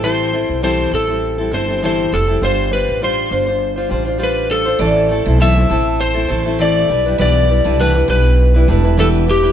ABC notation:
X:1
M:4/4
L:1/16
Q:"Swing 16ths" 1/4=101
K:Am
V:1 name="Electric slide guitar"
c4 c2 A4 c2 c2 A2 | c2 B2 c6 z2 B2 A2- | A4 e4 c4 d4 | d4 B2 B6 A2 G2 |]
V:2 name="Steel-string acoustic guitar"
z16 | z16 | d2 z c2 z A z3 c2 G3 z | B2 z A2 z G z3 A2 B3 z |]
V:3 name="Nylon-string guitar"
[A,,E,G,CEA]2 [G,CEA]2 [A,,E,G,CEA]2 [G,CEA] [G,CEA]2 [G,CEA] [G,CEA] [G,CEA] [A,,E,G,CEA]2 [G,CEA] [G,CEA] | [G,DFc]2 [G,DFc]2 [G,DFc]2 [G,DFc] [DFc]2 [DFc] [G,DFc] [DFc] [G,DFc]2 [G,DFc] [DFc] | [A,,E,A,CEA]2 [A,CEA] [A,CEA] [A,,E,A,CEA] [A,CEA] [A,CEA]3 [A,CEA] [A,CEA] [A,CEA] [A,,E,A,CEA]2 [G,DEB] [G,DEB] | [B,,E,G,DEB]2 [G,DEB] [G,DEB] [B,,E,G,DEB] [G,DEB] [G,DEB]3 [G,DEB] [G,DEB] [G,DEB] [B,,E,G,DEB]2 [G,DEB] [G,DEB] |]
V:4 name="Upright bass" clef=bass
A,,,3 B,,,3 A,,,4 G,,,4 F,,,2 | G,,,3 A,,,3 G,,,4 A,,,6 | A,,,3 B,,,3 A,,,4 A,,,4 B,,,2 | B,,,3 C,,3 B,,,4 E,,,6 |]